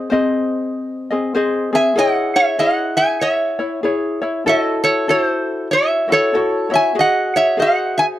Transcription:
0.00 0.11 G#4 medium
0.00 0.12 D#5 medium
0.10 1.11 C4 medium
0.10 1.11 G#4 medium
0.10 1.10 C5 medium
0.10 1.10 D#5 medium
1.10 1.34 C4 soft
1.10 1.34 G#4 soft
1.10 1.34 D#5 medium
1.35 1.72 C4 medium
1.35 1.71 G#4 medium
1.35 1.72 C5 medium
1.35 1.73 D#5 medium
1.73 1.95 C4 soft
1.73 1.94 G#4 soft
1.73 1.97 E5 medium
1.73 1.97 G#5 medium
1.96 2.58 E4 medium
1.96 2.57 G#4 medium
1.96 2.60 C#5 medium
1.96 2.33 D#5 medium
1.96 2.36 F#5 medium
2.36 2.58 C#5 medium
2.36 2.59 E5 medium
2.59 3.60 E4 medium
2.59 3.59 G#4 medium
2.59 3.58 C#5 medium
2.59 2.94 D#5 medium
2.59 2.97 F#5 medium
2.97 3.20 E5 medium
2.97 3.22 G#5 medium
3.21 4.42 C#5 medium
3.21 4.49 E5 medium
3.59 3.83 E4 soft
3.59 3.83 C#5 soft
3.83 4.22 E4 medium
3.83 4.21 G#4 medium
3.83 4.20 C#5 medium
4.22 4.45 E4 medium
4.22 4.46 C#5 medium
4.46 5.08 E4 medium
4.46 5.09 F#4 medium
4.46 5.07 A4 medium
4.46 4.82 A4 medium
4.46 5.09 C#5 medium
4.46 4.86 D#5 medium
4.84 5.06 A4 medium
4.84 5.09 C#5 medium
5.08 6.08 E4 medium
5.08 6.08 F#4 medium
5.08 6.08 A4 soft
5.08 5.67 A4 medium
5.08 5.21 C#5 medium
5.21 5.71 C5 medium
5.71 6.06 C#5 medium
5.71 6.10 E5 medium
6.08 6.33 E4 soft
6.08 6.33 F#4 soft
6.08 6.32 C#5 soft
6.12 6.68 A4 medium
6.12 6.74 C#5 medium
6.33 6.71 E4 medium
6.33 6.70 F#4 medium
6.33 6.70 A4 medium
6.33 6.69 C#5 medium
6.70 6.95 E4 soft
6.70 6.94 F#4 medium
6.70 6.94 C#5 medium
6.70 6.95 E5 medium
6.75 6.98 G#5 medium
6.95 7.57 F#4 medium
6.95 7.57 G#4 medium
6.99 7.32 D#5 medium
6.99 7.36 F#5 medium
7.36 7.57 C#5 medium
7.36 7.59 E5 medium
7.57 8.19 F#4 medium
7.57 8.19 G#4 medium
7.57 8.19 C5 medium
7.57 7.93 D#5 medium
7.62 7.98 F#5 medium
7.98 8.04 E5 medium
7.98 8.05 G#5 medium

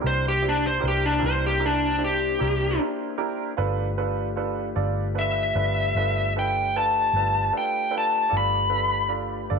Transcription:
0.00 3.55 A#3 medium
0.00 3.54 D4 medium
0.00 0.32 D4 soft
0.00 3.55 E4 medium
0.00 0.31 E4 soft
0.00 0.32 G4 soft
0.00 0.32 A#4 medium
0.00 3.55 C5 medium
0.04 0.79 C2 medium
0.04 0.24 C5 medium
0.28 0.45 G4 medium
0.42 0.72 D4 soft
0.42 0.72 E4 soft
0.42 0.72 G4 soft
0.42 0.72 C5 medium
0.49 0.65 D4 medium
0.67 0.84 C5 medium
0.80 1.19 C2 medium
0.80 1.11 D4 medium
0.80 1.10 E4 soft
0.80 1.11 G4 soft
0.80 1.11 A#4 medium
0.88 1.04 G4 medium
1.06 1.23 D4 medium
1.19 2.37 C2 medium
1.19 1.50 D4 medium
1.19 1.50 E4 soft
1.19 1.50 G4 soft
1.19 1.50 A#4 medium
1.26 1.43 C5 medium
1.47 1.63 G4 medium
1.59 1.90 D4 soft
1.59 1.90 E4 soft
1.59 1.90 G4 soft
1.59 1.90 A#4 medium
1.66 2.02 D4 medium
1.98 2.29 D4 medium
1.98 2.29 E4 soft
1.98 2.29 G4 soft
1.98 2.29 C5 medium
2.04 2.79 G4 medium
2.39 2.77 C2 medium
2.39 2.69 D4 soft
2.39 2.70 E4 soft
2.39 2.69 G4 soft
2.39 2.70 A#4 medium
2.79 3.09 D4 soft
2.79 3.09 E4 soft
2.79 3.09 G4 soft
2.79 3.09 A#4 medium
3.18 3.48 D4 medium
3.18 3.48 E4 medium
3.18 3.48 G4 medium
3.18 3.48 A#4 medium
3.57 4.73 G1 medium
3.57 8.28 A3 medium
3.57 3.87 D4 medium
3.57 3.87 F4 medium
3.57 8.29 F4 medium
3.57 8.29 G4 medium
3.57 3.88 A4 medium
3.57 3.88 B4 medium
3.57 8.29 B4 medium
3.98 4.27 D4 medium
3.98 4.28 F4 medium
3.98 4.27 A4 medium
3.98 4.27 B4 medium
4.36 4.67 D4 medium
4.36 4.66 F4 medium
4.36 4.67 A4 medium
4.36 4.67 B4 medium
4.75 5.52 G1 medium
4.75 5.06 D4 medium
4.75 5.06 F4 medium
4.75 5.06 A4 soft
4.75 5.06 D5 medium
5.15 5.45 D4 medium
5.15 5.45 F4 soft
5.15 5.45 A4 soft
5.15 5.45 B4 medium
5.19 6.33 E5 medium
5.55 5.92 G1 medium
5.55 5.85 D4 medium
5.55 5.85 F4 soft
5.55 5.85 A4 soft
5.55 5.85 B4 medium
5.95 7.10 G1 medium
5.95 6.26 D4 soft
5.95 6.25 F4 soft
5.95 6.26 A4 soft
5.95 6.26 B4 medium
6.36 6.65 D4 soft
6.36 6.65 F4 soft
6.36 6.65 A4 soft
6.36 6.65 B4 medium
6.36 6.75 G5 medium
6.76 7.05 D4 soft
6.76 7.05 F4 soft
6.76 7.05 A4 soft
6.76 7.05 B4 medium
6.76 7.53 A5 medium
7.13 7.50 G1 medium
7.13 7.45 D4 soft
7.13 7.45 F4 soft
7.13 7.45 A4 soft
7.13 7.45 B4 medium
7.53 7.83 D4 soft
7.53 7.83 F4 soft
7.53 7.83 A4 soft
7.53 7.83 B4 medium
7.57 7.94 G5 medium
7.91 8.21 D4 soft
7.91 8.21 F4 soft
7.91 8.21 A4 soft
7.91 8.22 B4 medium
7.98 8.34 A5 medium
8.29 9.47 G1 medium
8.29 9.59 A3 medium
8.29 8.61 D4 medium
8.29 9.59 F4 medium
8.29 8.61 F4 medium
8.29 9.59 G4 medium
8.29 8.61 A4 medium
8.29 9.59 B4 soft
8.29 8.61 D5 medium
8.37 9.11 B5 medium
8.70 9.00 D4 soft
8.70 9.00 F4 soft
8.70 9.01 A4 soft
8.70 9.00 B4 medium
9.08 9.40 D4 soft
9.08 9.40 F4 soft
9.08 9.40 A4 soft
9.08 9.40 D5 soft
9.50 9.59 G1 medium
9.50 9.59 D4 medium
9.50 9.59 F4 soft
9.50 9.59 A4 soft
9.50 9.59 D5 medium

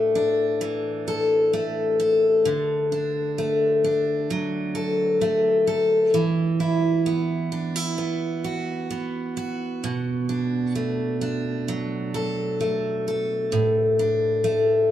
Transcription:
0.00 2.45 A2 medium
0.00 1.53 A3 soft
0.00 0.15 D4 soft
0.00 1.07 A4 soft
0.15 2.92 D4 soft
0.61 2.54 E3 medium
1.08 1.99 A4 soft
1.53 3.38 A3 soft
2.00 4.74 A4 soft
2.45 6.14 D3 medium
2.92 3.83 D4 soft
3.38 5.20 A3 soft
3.84 6.24 D4 soft
4.30 6.13 F#3 medium
4.75 5.66 A4 soft
5.21 6.23 A3 soft
5.67 6.23 A4 soft
6.14 9.83 E3 medium
6.60 7.52 E4 soft
7.06 7.98 B3 soft
7.52 7.76 D4 soft
7.76 9.93 E4 soft
7.98 8.90 B3 soft
8.44 9.36 F#4 soft
8.90 10.75 B3 soft
9.37 12.14 F#4 soft
9.84 13.53 B2 medium
10.29 11.21 D4 soft
10.75 12.60 A3 soft
11.21 13.99 D4 soft
11.68 13.62 F#3 soft
12.14 13.07 A4 soft
12.61 14.44 A3 soft
13.08 14.91 A4 soft
13.52 14.91 A2 medium
13.99 14.91 D4 soft
14.44 14.91 A3 soft

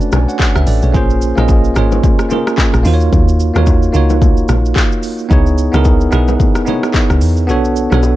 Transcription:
0.00 0.96 A3 loud
0.00 0.93 C#4 loud
0.00 0.96 D4 loud
0.00 0.97 F#4 loud
0.00 0.56 B4 loud
0.00 0.28 C#5 medium
0.00 0.12 D5 medium
0.00 shaker medium
0.12 0.27 B1 loud
0.12 0.28 D5 medium
0.12 0.28 G#5 medium
0.12 cross-stick loud
0.12 low bongo medium
0.12 low conga medium
0.12 shaker medium
0.28 0.55 C#5 medium
0.28 0.54 F#5 medium
0.28 shaker medium
0.39 kick loud
0.39 clap medium
0.39 high bongo medium
0.39 shaker medium
0.56 0.66 C#2 medium
0.56 0.67 B4 medium
0.56 0.67 E5 medium
0.56 cross-stick medium
0.56 shaker medium
0.67 0.81 A1 medium
0.67 0.83 A4 medium
0.67 0.82 D5 medium
0.67 open hi-hat medium
0.67 shaker medium
0.82 0.93 B1 medium
0.82 0.94 G#4 medium
0.82 1.09 C#5 medium
0.82 shaker medium
0.93 1.33 A#1 loud
0.93 1.27 A#3 loud
0.93 1.28 C#4 loud
0.93 1.28 F4 loud
0.93 1.28 G#4 loud
0.93 1.29 C5 loud
0.93 kick loud
0.93 low conga medium
0.93 shaker medium
1.10 shaker medium
1.22 shaker loud
1.36 1.73 A#1 loud
1.36 1.68 A#3 medium
1.36 1.69 C#4 medium
1.36 1.69 F4 medium
1.36 1.70 G#4 medium
1.36 cross-stick medium
1.36 low bongo medium
1.36 shaker medium
1.40 1.70 D#5 medium
1.48 kick loud
1.48 high bongo medium
1.48 shaker medium
1.64 shaker medium
1.74 2.01 G#1 loud
1.74 2.21 A#3 medium
1.74 2.21 C#4 medium
1.74 2.22 F4 medium
1.74 2.22 G#4 medium
1.74 2.23 C#5 medium
1.74 cross-stick loud
1.74 shaker medium
1.92 low bongo medium
1.92 shaker soft
2.03 kick loud
2.03 low conga medium
2.03 shaker medium
2.19 cross-stick medium
2.19 shaker medium
2.29 2.82 A#3 medium
2.29 2.85 C#4 medium
2.29 2.84 F4 medium
2.29 2.86 G#4 medium
2.29 low bongo medium
2.29 low conga medium
2.29 shaker loud
2.33 2.86 A#4 medium
2.47 cross-stick loud
2.47 shaker medium
2.57 kick loud
2.57 clap medium
2.57 high bongo medium
2.57 shaker medium
2.74 2.84 A#1 medium
2.74 cross-stick medium
2.74 shaker medium
2.83 3.10 D#2 loud
2.83 3.39 A#3 medium
2.83 3.39 D#4 medium
2.83 3.40 F4 medium
2.83 3.40 F#4 medium
2.83 2.94 C5 medium
2.83 open hi-hat medium
2.83 shaker medium
2.94 3.44 C#5 loud
3.00 shaker medium
3.13 3.52 D#2 loud
3.13 kick loud
3.13 low conga medium
3.13 shaker medium
3.28 shaker medium
3.40 shaker loud
3.54 3.91 D#2 medium
3.54 3.87 A#3 medium
3.54 3.87 D#4 medium
3.54 3.88 F4 medium
3.54 3.88 F#4 medium
3.54 cross-stick medium
3.54 low bongo medium
3.54 shaker medium
3.58 3.89 C#5 medium
3.66 kick loud
3.66 high bongo medium
3.66 shaker medium
3.83 shaker medium
3.92 4.45 C#2 medium
3.92 4.81 A#3 medium
3.92 4.82 D#4 medium
3.92 4.82 F4 medium
3.92 4.83 F#4 medium
3.92 4.83 C#5 loud
3.92 shaker medium
4.10 low bongo medium
4.10 shaker soft
4.22 kick loud
4.22 low conga medium
4.22 shaker medium
4.37 shaker medium
4.48 4.74 A#1 loud
4.48 cross-stick medium
4.48 low bongo medium
4.48 low conga medium
4.48 shaker loud
4.66 shaker medium
4.76 kick loud
4.76 clap medium
4.76 high bongo medium
4.76 shaker medium
4.92 shaker medium
5.03 open hi-hat medium
5.03 shaker medium
5.19 shaker medium
5.29 5.70 C#2 loud
5.29 5.63 B3 loud
5.29 5.64 D#4 loud
5.29 5.64 E4 loud
5.29 5.65 G#4 loud
5.29 5.65 C#5 loud
5.29 kick loud
5.29 low conga medium
5.29 shaker medium
5.47 shaker medium
5.58 shaker loud
5.72 6.09 C#2 loud
5.72 6.05 B3 medium
5.72 6.05 D#4 medium
5.72 6.06 E4 medium
5.72 6.06 G#4 medium
5.72 6.07 A#4 loud
5.72 cross-stick medium
5.72 low bongo medium
5.72 shaker medium
5.85 kick loud
5.85 high bongo medium
5.85 shaker medium
6.01 shaker medium
6.11 6.37 B1 medium
6.11 6.57 B3 medium
6.11 6.57 D#4 medium
6.11 6.58 E4 medium
6.11 6.58 G#4 medium
6.11 6.59 B4 loud
6.11 cross-stick loud
6.11 shaker medium
6.28 low bongo medium
6.28 shaker soft
6.40 kick loud
6.40 low conga medium
6.40 shaker medium
6.55 cross-stick medium
6.55 shaker medium
6.65 7.33 B3 medium
6.65 7.34 D#4 medium
6.65 7.34 E4 medium
6.65 7.35 G#4 medium
6.65 7.35 C#5 medium
6.65 low bongo medium
6.65 low conga medium
6.65 shaker loud
6.83 cross-stick loud
6.83 shaker medium
6.94 kick loud
6.94 clap medium
6.94 high bongo medium
6.94 shaker medium
7.10 7.23 C#2 medium
7.10 cross-stick medium
7.10 shaker medium
7.21 7.50 E2 loud
7.21 open hi-hat medium
7.21 shaker medium
7.37 shaker medium
7.47 7.88 B1 loud
7.47 7.82 B3 loud
7.47 7.82 D4 loud
7.47 7.83 F#4 loud
7.47 7.83 A4 loud
7.47 7.84 C#5 loud
7.47 low conga medium
7.47 shaker medium
7.65 shaker medium
7.76 shaker loud
7.90 8.16 B1 loud
7.90 8.16 B3 medium
7.90 8.16 D4 medium
7.90 8.16 F#4 medium
7.90 8.16 A4 medium
7.90 8.16 C#5 medium
7.90 cross-stick medium
7.90 low bongo medium
7.90 shaker medium
8.03 high bongo medium
8.03 shaker medium

